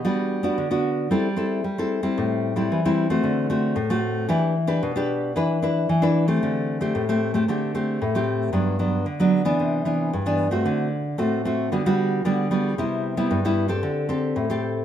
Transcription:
\new Staff \with { instrumentName = "Nylon-string guitar" } { \time 4/4 \key g \major \tempo 4 = 113 << { <b d' fis'>8. <b d' fis'>8 <b d' fis'>8. <c' e' a'>16 r16 <c' e' a'>8 r16 <c' e' a'>8 <g c' e'>16~ | <g c' e'>8. <g c' e'>8 <g c' e'>8 <a c' fis'>8. <a c' fis'>8 r16 <a c' fis'>8. | <d' g' b'>8 r16 <d' g' b'>8 <d' g' b'>8. <d' e' b'>8 <d' e' b'>8 r16 <d' e' b'>8 <a c' g'>16~ | <a c' g'>8. <a c' g'>8 <a c' g'>8 <a c' g'>16 <a c' g'>8 <a c' g'>8 r16 <a c' g'>8. |
<fis b d'>8 <fis b d'>8 r16 <fis b d'>8 <e b d'>8. <e b d'>8 r16 <e b d'>8 <a c' fis'>16~ | <a c' fis'>8 r8 <a c' fis'>8 <a c' fis'>8 <g b fis'>16 <g b fis'>8. <g b fis'>8 <g b fis'>8 | <g b e'>8. <g b e'>8 <g b e'>8 <c' g' a'>8. <c' g' a'>8. <c' g' a'>8. | } \\ { g4 d4 g4 g4 | a,4 e4 d4 a,4 | e4 b,4 e4 e4 | d4 a,4 d4 a,4 |
g,4 d4 c4 g,4 | d4 a,4 d4 d4 | c4 g,4 d4 a,4 | } >> }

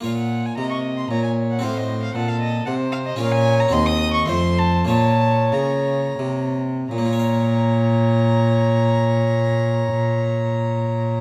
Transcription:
<<
  \new Staff \with { instrumentName = "Violin" } { \time 3/4 \key bes \minor \tempo 4 = 97 f''16 ges''8 aes''16 bes''16 des'''8 c'''16 bes''16 aes''8 ges''16 | f''16 ees''8 f''16 fis''16 f''16 ees''8 fis''8 f''16 ees''16 | f''16 aes''8 bes''16 c'''16 ees'''8 des'''16 c'''8 a''8 | a''4 bes''4. r8 |
bes''2.~ | bes''2. | }
  \new Staff \with { instrumentName = "Violin" } { \time 3/4 \key bes \minor r4 ees''4 des''4 | c''4 a'4 c''4 | des''4 ees''4 c''4 | des''2~ des''8 r8 |
des''2.~ | des''2. | }
  \new Staff \with { instrumentName = "Harpsichord" } { \time 3/4 \key bes \minor <bes f' des''>2. | <c' fis' c''>2. | <des' f' bes'>4 <c' ges' c''>4 <a f' c''>4 | <bes f' des''>2. |
<bes, bes f' des'' f''>2.~ | <bes, bes f' des'' f''>2. | }
  \new Staff \with { instrumentName = "Harpsichord" } { \clef bass \time 3/4 \key bes \minor bes,4 c4 bes,4 | a,4 bes,4 c4 | bes,4 ees,4 f,4 | bes,4 des4 c4 |
r2. | r2. | }
  \new Staff \with { instrumentName = "Cello" } { \clef bass \time 3/4 \key bes \minor bes,4 c4 bes,4 | a,4 bes,4 c4 | bes,4 ees,4 f,4 | bes,4 des4 c4 |
bes,2.~ | bes,2. | }
>>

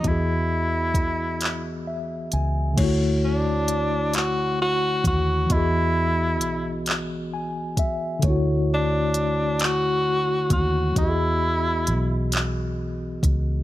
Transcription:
<<
  \new Staff \with { instrumentName = "Tine electric piano" } { \time 6/8 \key e \major \tempo 4. = 44 << { r2 e''8 gis''8 | r2. | r2 gis''8 e''8 | r2. |
r2. | } \\ { <e b fis' gis' dis''>2. | <d a e' fis' cis''>2. | <e b fis' gis' dis''>2. | <d a e' fis' cis''>2. |
<e b fis' g' gis' dis''>2. | } >> }
  \new Staff \with { instrumentName = "Tenor saxophone" } { \time 6/8 \key e \major e'2 r4 | r8 d'4 fis'8 fis'8 fis'8 | e'4. r4. | r8 d'4 fis'4 fis'8 |
e'4. r4. | }
  \new Staff \with { instrumentName = "Fingered electric bass" } { \clef bass \time 6/8 \key e \major e,2~ e,8 cis,8 | d,2~ d,8 dis,8 | e,4 b,,4. cis,8 | d,2~ d,8 dis,8 |
e,4 b,,4. cis,8 | }
  \new DrumStaff \with { instrumentName = "Drums" } \drummode { \time 6/8 <hh bd>4 <hh bd>8 <hc hh>4 hh8 | <cymc hh bd>4 hh8 <hc hh>4 <hh bd>8 | <hh bd>4 hh8 <hc hh>4 <hh bd>8 | <hh bd>4 hh8 <hc hh>4 <hh bd>8 |
<hh bd>4 hh8 <hc hh>4 <hh bd>8 | }
>>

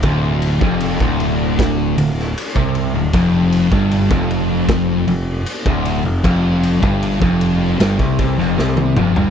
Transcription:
<<
  \new Staff \with { instrumentName = "Distorted electric guitar" } { \clef bass \time 4/4 \key f \major \tempo 4 = 77 d,8. f,8 d,4~ d,16 d,8 r16 c8 d,16 | f,8. g,8 f,4~ f,16 f,8 r16 d,8 f,16 | f,8. g,8 f,8. g,16 c16 c16 f,16 c8 f,16 g,16 | }
  \new Staff \with { instrumentName = "Distorted electric guitar" } { \clef bass \time 4/4 \key f \major d,8. f,8 d,4~ d,16 d,8 r16 c8 d,16 | f,8. g,8 f,4~ f,16 f,8 r16 d,8 f,16 | f,8. g,8 f,8. g,16 c16 c16 f,16 c8 f,16 g,16 | }
  \new Staff \with { instrumentName = "Overdriven electric guitar" } { \clef bass \time 4/4 \key f \major d,8. f,8 d,4~ d,16 d,8 r16 c8 d,16 | f,8. g,8 f,4~ f,16 f,8 r16 d,8 f,16 | f,8. g,8 f,8. g,16 c16 c16 f,16 c8 f,16 g,16 | }
  \new Staff \with { instrumentName = "Picked electric bass" } { \clef bass \time 4/4 \key f \major d,,8. f,,8 d,,4~ d,,16 d,,8 r16 c,8 d,,16 | f,,8. g,,8 f,,4~ f,,16 f,,8 r16 d,,8 f,,16 | f,,8. g,,8 f,,8. g,,16 c,16 c,16 f,,16 c,8 f,,16 g,,16 | }
  \new DrumStaff \with { instrumentName = "Drums" } \drummode { \time 4/4 <bd cymr>8 cymr16 bd16 cymr16 bd16 cymr8 <bd cymr sn>8 cymr16 sn16 cymr16 bd16 cymr8 | <bd cymr>8 cymr16 bd16 cymr16 bd16 cymr8 <bd cymr sn>8 cymr8 cymr16 bd16 cymr8 | <bd cymr>8 cymr16 bd16 cymr16 bd16 cymr8 <cymr sn>16 bd16 <bd cymr>16 sn16 sn16 tommh16 toml16 tomfh16 | }
>>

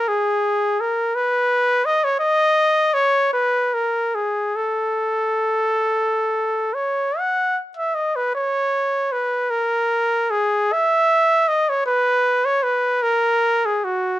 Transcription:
\new Staff \with { instrumentName = "Trumpet" } { \time 6/8 \key cis \dorian \tempo 4. = 51 gis'4 ais'8 b'4 dis''16 cis''16 | dis''4 cis''8 b'8 ais'8 gis'8 | a'2~ a'8 cis''8 | fis''8. e''16 dis''16 b'16 cis''4 b'8 |
ais'4 gis'8 e''4 dis''16 cis''16 | b'8. cis''16 b'8 ais'8. gis'16 fis'8 | }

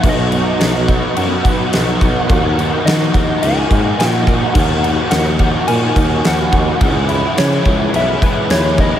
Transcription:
<<
  \new Staff \with { instrumentName = "Soft synth lead" } { \time 4/4 \key dis \phrygian \tempo 4 = 106 dis''2. r4 | r4 dis''4 gis''4 fis''4 | r4 fis''4 gis''4 fis''4 | r4 cis''4 e''8 b'8 cis''8 dis''8 | }
  \new Staff \with { instrumentName = "Overdriven electric guitar" } { \time 4/4 \key dis \phrygian <b, fis b dis' fis'>8 <b dis' fis'>8 <fis b dis' fis'>8 <b dis' fis'>8 <b, fis b dis' fis'>8 <b dis' fis'>8 <fis b dis' fis'>8 <b dis' fis'>8 | <dis ais dis' fis'>8 <ais dis' fis'>8 <dis ais dis' fis'>8 <ais dis' fis'>8 <dis ais dis' fis'>8 <ais dis' fis'>8 <dis ais dis' fis'>8 <ais dis' fis'>8 | <dis ais dis' fis'>8 <ais dis' fis'>8 <dis ais dis' fis'>8 <ais dis' fis'>8 <dis ais dis' fis'>8 <ais dis' fis'>8 <dis ais dis' fis'>8 <ais dis' fis'>8 | <cis e gis cis' e'>8 <gis cis' e'>8 <e gis cis' e'>8 <gis cis' e'>8 <cis e gis cis' e'>8 <gis cis' e'>8 <e gis cis' e'>8 <gis cis' e'>8 | }
  \new Staff \with { instrumentName = "Tuba" } { \clef bass \time 4/4 \key dis \phrygian b,,4 b,,4 fis,8 r8 b,,8 b,,8 | dis,4 dis8 dis,8 cis,8 gis,8 ais,4 | dis,4 dis,4 ais,8 dis,8 dis,8 dis,8 | cis,4 cis8 cis,8 b,,8 r8 dis,4 | }
  \new DrumStaff \with { instrumentName = "Drums" } \drummode { \time 4/4 <cymc bd>8 cymc8 <cymc sn>8 <cymc bd>8 cymc8 <cymc bd>8 <cymc sn>8 <cymc bd>8 | <cymc bd>8 cymc8 <cymc sn>8 <cymc bd>8 cymc8 <cymc bd>8 <cymc sn>8 <cymc bd>8 | <cymc bd>8 cymc8 <cymc sn>8 <cymc bd>8 cymc8 <cymc bd>8 <cymc sn>8 <cymc bd>8 | <cymc bd>8 cymc8 <cymc sn>8 <cymc bd>8 cymc8 <cymc bd>8 <cymc sn>8 <cymc bd>8 | }
>>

